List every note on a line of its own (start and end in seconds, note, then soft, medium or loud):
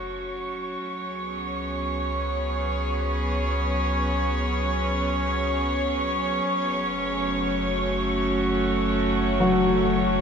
0.00 0.77 F#1 medium
0.00 10.21 F#3 medium
0.00 0.82 A3 medium
0.00 10.21 C#4 medium
0.00 3.07 F#4 medium
0.00 10.21 C#5 medium
0.00 10.21 C#6 medium
0.82 6.40 C#2 medium
1.13 7.96 G#4 medium
1.19 7.89 B3 medium
6.44 10.21 F#1 medium
6.93 10.21 A3 medium
7.12 10.21 F#4 medium
9.40 10.21 F#3 medium